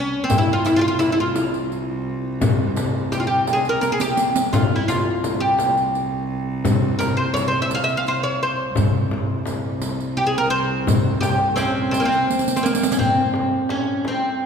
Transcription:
Already playing: cello C2
0.00 oud C#4
0.24 oud C4
0.30 cello C2, riq, frame drum, darbuka dum
0.38 oud E4
0.53 oud F4
0.65 oud E4, riq, darbuka tek, frame drum
0.76 oud F4 G4
0.81 oud F4
0.88 oud F4
0.99 oud E4, riq, darbuka tek, frame drum
1.12 oud E4
1.20 oud F4
1.36 riq, darbuka tek, frame drum
1.54 riq
1.72 riq, darbuka ka
2.07 darbuka ka
2.41 riq, frame drum, darbuka dum
2.76 riq, darbuka tek, frame drum
3.12 oud G4, riq, darbuka tek, frame drum
3.20 oud F4
3.27 oud G4
3.47 riq, darbuka tek, frame drum
3.53 oud G#4
3.65 riq, darbuka ka
3.69 oud A#4
3.81 oud A#4, riq, darbuka tek
3.92 oud G#4, darbuka ka
4.00 oud G4, riq, darbuka tek
4.09 darbuka ka
4.17 riq, darbuka tek
4.27 darbuka ka
4.35 riq, darbuka tek
4.44 darbuka ka
4.53 cello C2, oud F4, riq, darbuka dum, frame drum
4.76 oud E4
4.88 oud F4, riq, darbuka tek, frame drum
5.24 riq, darbuka tek, frame drum
5.40 oud G4
5.59 riq, darbuka tek, frame drum
5.77 riq
5.95 riq, darbuka ka
6.31 darbuka ka
6.65 riq, frame drum, darbuka dum
6.99 oud A#4, riq, darbuka tek, frame drum
7.17 oud C5
7.34 oud C#5, riq, darbuka tek, frame drum
7.48 oud C5
7.62 oud E5
7.70 riq, darbuka tek, frame drum
7.75 oud F5
7.84 oud E5
7.89 riq
7.97 oud F5
8.07 oud C5, riq, darbuka ka
8.23 oud C#5
8.43 oud C5
8.76 cello C2, riq, frame drum, darbuka dum
9.11 darbuka tek, frame drum
9.46 riq, darbuka tek, frame drum
9.82 riq, darbuka tek, frame drum
10.00 riq
10.17 oud G4, darbuka ka
10.27 oud G#4
10.38 oud A#4
10.50 oud C5
10.87 riq, frame drum, darbuka dum
11.21 oud G4, riq, darbuka tek, frame drum
11.56 oud C4 C#4, riq, frame drum
11.60 darbuka tek
11.91 oud C4, riq, frame drum
11.95 darbuka tek
12.00 oud A#3
12.05 oud C4
12.12 riq, darbuka ka
12.30 riq, darbuka tek
12.39 riq, darbuka ka
12.48 riq, darbuka tek
12.56 oud C4, riq, darbuka ka
12.63 oud A#3, riq, darbuka tek
12.73 riq, darbuka ka
12.83 riq, darbuka tek
12.92 oud C#4, riq, darbuka ka
12.98 oud C4, frame drum, darbuka dum
13.34 darbuka tek, frame drum
13.69 oud C#4, darbuka tek, frame drum
14.05 oud C4, darbuka tek, frame drum
14.25 darbuka ka

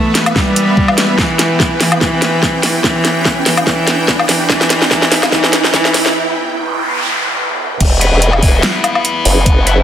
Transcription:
Already playing: supersaw synth E3 B3 B4 E5, cello A3, riser
0.15 snare, closed hi-hat
0.26 closed hi-hat, low woodblock
0.36 cello G3, kick, snare
0.56 closed hi-hat
0.77 kick
0.88 low woodblock
0.98 snare, closed hi-hat
1.18 cello E3, supersaw synth G5, kick, snare
1.39 snare, closed hi-hat
1.60 kick, snare
1.80 cello E3, snare, open hi-hat
1.92 closed hi-hat, low woodblock
2.01 cello E3, kick, snare
2.22 snare, closed hi-hat
2.43 kick, snare
2.63 cello E3, snare, open hi-hat
2.84 cello E3, kick, snare
3.05 snare, closed hi-hat
3.25 kick, snare
3.46 cello E3, snare, open hi-hat
3.57 closed hi-hat, low woodblock
3.67 cello E3, kick, snare
3.87 snare, closed hi-hat
4.08 kick, snare
4.19 low woodblock
4.29 cello E3, snare, open hi-hat
4.49 cello E3, kick, snare
4.61 snare
4.70 snare, closed hi-hat
4.82 snare
4.91 cello E3, kick, snare
5.02 snare
5.12 snare, open hi-hat
5.23 snare, closed hi-hat, low woodblock
5.32 cello E3, kick, snare
5.44 snare
5.53 snare, closed hi-hat
5.64 snare
5.74 cello E3, kick, snare
5.85 snare
5.94 snare, open hi-hat
6.06 snare
6.15 noise sweep
7.81 wobble bass E1, kick, closed hi-hat, crash
8.01 distorted electric guitar B3 E4 B4, closed hi-hat
8.13 wobble bass E1
8.22 closed hi-hat
8.33 low woodblock
8.43 kick, open hi-hat
8.54 wobble bass E1
8.63 snare, clap, closed hi-hat
8.84 closed hi-hat, low woodblock
8.95 low woodblock
9.05 closed hi-hat
9.25 wobble bass F#1, open hi-hat
9.46 kick, closed hi-hat
9.66 distorted electric guitar B3 E4 B4, closed hi-hat

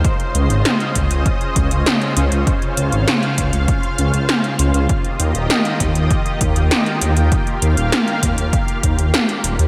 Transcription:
Already playing: analog synth pad C5
0.05 analog synth pad C#3 C#4 F4 D#5, kick, closed hi-hat
0.20 closed hi-hat
0.35 detuned saw bass C#2, closed hi-hat
0.50 detuned saw bass G#1, closed hi-hat
0.65 snare, closed hi-hat
0.80 closed hi-hat
0.95 detuned saw bass C#2, kick, closed hi-hat
1.11 detuned saw bass C#2, closed hi-hat
1.26 kick, closed hi-hat
1.41 closed hi-hat
1.56 detuned saw bass C#2, kick, closed hi-hat
1.71 detuned saw bass C#2, closed hi-hat
1.86 snare, closed hi-hat
2.02 closed hi-hat
2.17 detuned saw bass C#2, closed hi-hat
2.32 detuned saw bass C#2, closed hi-hat
2.47 analog synth pad F5, kick, closed hi-hat
2.62 closed hi-hat
2.77 detuned saw bass C#2, closed hi-hat
2.92 detuned saw bass G#1, closed hi-hat
3.08 snare, closed hi-hat
3.23 closed hi-hat
3.38 detuned saw bass C#2, kick, closed hi-hat
3.53 detuned saw bass C#2, closed hi-hat
3.68 kick, closed hi-hat
3.83 closed hi-hat
3.98 detuned saw bass C#2, closed hi-hat
4.14 detuned saw bass C#2, closed hi-hat
4.29 snare, closed hi-hat
4.44 closed hi-hat
4.59 detuned saw bass C#2, closed hi-hat
4.74 detuned saw bass C#2, closed hi-hat
4.89 analog synth pad D#3 A#3 G4 D#5, kick, closed hi-hat
5.05 closed hi-hat
5.20 detuned saw bass D#2, closed hi-hat
5.35 detuned saw bass D#1, closed hi-hat
5.50 snare, closed hi-hat
5.65 closed hi-hat
5.80 detuned saw bass D#2, kick, closed hi-hat
5.95 detuned saw bass D#2, closed hi-hat
6.11 kick, closed hi-hat
6.26 closed hi-hat
6.41 detuned saw bass D#2, kick, closed hi-hat
6.56 detuned saw bass D#2, closed hi-hat
6.71 snare, closed hi-hat
6.86 closed hi-hat
7.01 detuned saw bass D#2, closed hi-hat
7.17 detuned saw bass D#2, closed hi-hat
7.32 analog synth pad F5, kick, closed hi-hat
7.47 closed hi-hat
7.62 detuned saw bass D#2, closed hi-hat
7.77 detuned saw bass D#1, closed hi-hat
7.92 snare, closed hi-hat
8.08 closed hi-hat
8.23 detuned saw bass D#2, kick, closed hi-hat
8.38 detuned saw bass D#2, closed hi-hat
8.53 kick, closed hi-hat
8.68 closed hi-hat
8.83 detuned saw bass D#2, kick, closed hi-hat
8.99 detuned saw bass D#2, closed hi-hat
9.14 snare, closed hi-hat
9.29 closed hi-hat
9.44 detuned saw bass D#1, closed hi-hat
9.59 detuned saw bass D#2, closed hi-hat

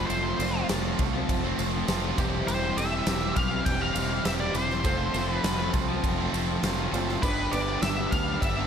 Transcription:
Already playing: distorted electric guitar F3 A3, tonewheel organ F3 C4 A4, overdriven electric guitar A3 C4 F4, upright piano C4 F4 A4
0.07 fingered electric bass F1, overdriven electric guitar F3 A3, lead electric guitar C5, ride, tambourine
0.12 overdriven electric guitar C4 F4
0.39 fingered electric bass F1, overdriven electric guitar F3 A3 C4 F4, upright piano C4 F4 A4 D5, ride, tambourine
0.55 overdriven electric guitar A3 C4 F4
0.69 fingered electric bass F1, overdriven electric guitar F3 A3 C4 F4, snare, ride, tambourine
0.84 overdriven electric guitar A3 C4 F4
0.99 fingered electric bass C2, overdriven electric guitar F3 A3 C4 F4, muted overdriven electric guitar stroke, kick, ride, tambourine
1.13 overdriven electric guitar A3 C4 F4, muted overdriven electric guitar stroke
1.29 fingered electric bass F1, kick, ride, tambourine
1.43 overdriven electric guitar A3 C4 F4
1.58 fingered electric bass F1, overdriven electric guitar F3 A3 C4 F4, upright piano F5, ride, tambourine
1.73 overdriven electric guitar A3 C4 F4, upright piano G5, muted overdriven electric guitar stroke
1.88 fingered electric bass F1, overdriven electric guitar F3 A3 C4 F4, upright piano A5, snare, ride, tambourine
2.03 overdriven electric guitar A3 C4 F4
2.18 fingered electric bass E1, tonewheel organ E3 C4 G4, overdriven electric guitar E3 G3 C4 G4, upright piano C4 E4 G4 C5 C6, kick, ride, tambourine
2.47 fingered electric bass E1, overdriven electric guitar E3 G3 C4 G4, lead electric guitar C5, ride, tambourine
2.77 fingered electric bass E1, overdriven electric guitar E3 G3 C4 G4, upright piano E3 C4 G4 A4, lead electric guitar E5, ride, tambourine
2.91 overdriven electric guitar G3 C4 G4
3.07 fingered electric bass E1, overdriven electric guitar E3 G3 C4 G4, snare, ride, tambourine
3.22 overdriven electric guitar G3 C4 G4
3.36 fingered electric bass B1, overdriven electric guitar E3 G3 C4 G4, lead electric guitar F5, muted overdriven electric guitar stroke, kick, ride, tambourine
3.51 overdriven electric guitar G3 C4 G4, muted overdriven electric guitar stroke
3.65 fingered electric bass E1, lead electric guitar G5, kick, ride, tambourine
3.81 overdriven electric guitar G3 C4 G4, lead electric guitar F5
3.95 fingered electric bass E1, overdriven electric guitar E3 G3 C4 G4, ride, tambourine
4.10 overdriven electric guitar G3 C4 G4, muted overdriven electric guitar stroke
4.25 fingered electric bass E1, overdriven electric guitar E3 G3 C4 G4, lead electric guitar E5, snare, ride, tambourine
4.40 overdriven electric guitar G3 C4 G4, lead electric guitar D5
4.54 fingered electric bass E1, overdriven electric guitar E3 G3 C4 G4, upright piano C4 E4 G4 C5, lead electric guitar C5, ride, tambourine
4.70 snare
4.84 fingered electric bass F1, overdriven electric guitar F3 A3 C4 F4, tonewheel organ F3 C4 A4, upright piano C4 F4 A4 C5, distorted electric guitar A4, kick, ride, tambourine
5.14 fingered electric bass F1, overdriven electric guitar F3 A3 C4 F4, upright piano C4 F4 A4 C5, ride, tambourine
5.30 overdriven electric guitar A3 C4 F4, lead electric guitar B4
5.44 fingered electric bass F1, overdriven electric guitar F3 A3 C4 F4, snare, ride, tambourine
5.58 overdriven electric guitar A3 C4 F4
5.73 fingered electric bass C2, overdriven electric guitar F3 A3 C4 F4, upright piano C6, muted overdriven electric guitar stroke, kick, ride, tambourine
5.89 overdriven electric guitar A3 C4 F4, muted overdriven electric guitar stroke
6.03 fingered electric bass F1, upright piano A5, kick, ride, tambourine
6.18 overdriven electric guitar A3 C4 F4, upright piano A5
6.33 fingered electric bass F1, overdriven electric guitar F3 A3 C4 F4, upright piano G5, ride, tambourine
6.48 overdriven electric guitar A3 C4 F4, muted overdriven electric guitar stroke
6.63 fingered electric bass F1, overdriven electric guitar F3 A3 C4 F4, upright piano F5, snare, ride, tambourine
6.78 overdriven electric guitar A3 C4 F4, upright piano F5
6.91 fingered electric bass F#1, overdriven electric guitar F3 A3, upright piano C4 F4 A4 C5 D5, distorted electric guitar F4 A4, ride, tambourine
6.95 overdriven electric guitar C4 F4
7.09 snare
7.22 fingered electric bass G1, distorted electric guitar G2 D3, overdriven electric guitar G3 B3 D4 G4, tonewheel organ G#3 D#4 C5, upright piano B3 D4 G4 B4, lead electric guitar B4, kick, tambourine, crash
7.42 tonewheel organ G3 D4 B4
7.51 fingered electric bass G1, overdriven electric guitar G3 B3 D4, upright piano B3 D4 G4 B4, lead electric guitar D5, ride
7.56 overdriven electric guitar G4
7.67 overdriven electric guitar B3 D4 G4
7.82 fingered electric bass G1, overdriven electric guitar G3 B3 D4 G4, lead electric guitar E5, snare, ride, tambourine
7.98 overdriven electric guitar B3 D4 G4
8.11 fingered electric bass D2, overdriven electric guitar G3 B3 D4 G4, lead electric guitar F5, muted overdriven electric guitar stroke, kick, ride, tambourine
8.28 overdriven electric guitar B3 D4 G4, muted overdriven electric guitar stroke
8.42 fingered electric bass G1, lead electric guitar E5, kick, ride, tambourine
8.57 overdriven electric guitar B3 D4 G4

